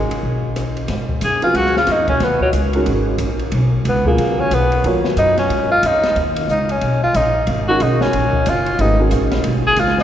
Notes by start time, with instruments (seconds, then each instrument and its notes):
Already playing: upright piano D#3 G#3 C#4 F#4 A#4, tenor saxophone G#3
0.11 muted upright bass stroke, ride
0.23 upright bass B1
0.56 cross-stick, hi-hat pedal, ride
0.77 ride
0.88 upright bass G#2, snare, ride
1.09 kick
1.21 upright bass F#2, tenor saxophone G#4, hi-hat pedal, ride
1.42 upright piano C#3 F#3 B3 F4 G#4, tenor saxophone F4, muted upright bass stroke, ride
1.54 upright bass C#2, tenor saxophone F#4, ride
1.66 snare
1.76 tenor saxophone F4, snare
1.87 upright bass F2, snare, hi-hat pedal, ride
1.92 tenor saxophone D#4
1.98 upright bass D#2
2.08 upright bass B1, tenor saxophone C#4, kick, ride
2.20 upright bass D#2, tenor saxophone B3, snare, ride
2.40 tenor saxophone F#3, muted upright bass stroke, kick
2.53 upright bass C#2, hi-hat pedal, ride
2.73 upright piano D#3 G#3 C#4 F#4 A#4, ride
2.86 upright bass G#1, ride
3.18 upright bass A#1, hi-hat pedal, ride
3.39 ride
3.52 upright bass B1, ride
3.85 upright bass C#2, tenor saxophone B3, hi-hat pedal, ride
4.05 upright piano B2 C#3 F#3 F4 G#4, tenor saxophone A#3, kick
4.18 upright bass D#2, ride
4.40 tenor saxophone C#4
4.51 upright bass B1, tenor saxophone B3, hi-hat pedal, ride
4.72 ride
4.84 upright bass D#2, upright piano F#3 B3 F4 A#4 C#5, ride
5.04 snare
5.16 upright bass F#2, tenor saxophone D#4, hi-hat pedal, ride
5.37 tenor saxophone C#4, snare, ride
5.50 upright bass G#2, ride
5.71 tenor saxophone F4
5.83 upright bass F2, tenor saxophone D#4, hi-hat pedal, ride
6.03 snare, ride
6.16 upright bass D#2, ride
6.36 ride
6.48 upright bass C#2, tenor saxophone D#4, hi-hat pedal
6.69 tenor saxophone C#4, ride
6.81 upright bass B1, ride
7.04 tenor saxophone F4
7.14 upright bass A#1, tenor saxophone D#4, hi-hat pedal, ride
7.47 upright bass G#1, ride
7.68 upright piano D#3 G#3 C#4 F#4 A#4, tenor saxophone F#4
7.80 upright bass B1, tenor saxophone D#4, hi-hat pedal, ride
8.01 tenor saxophone C#4, snare
8.13 upright bass A#1, ride
8.33 muted upright bass stroke, kick
8.46 upright bass F#1, tenor saxophone F4, hi-hat pedal, ride
8.66 ride
8.79 upright bass G#1, upright piano E3 A3 D4 G4 B4, tenor saxophone D#4, ride
8.99 upright piano D#3 G#3 C#4 F#4 A#4
9.11 upright bass A#1, hi-hat pedal, ride
9.31 snare, ride
9.44 upright bass B1, ride
9.67 tenor saxophone G#4
9.76 upright bass C#2, tenor saxophone F4, hi-hat pedal, ride
9.88 snare
9.99 snare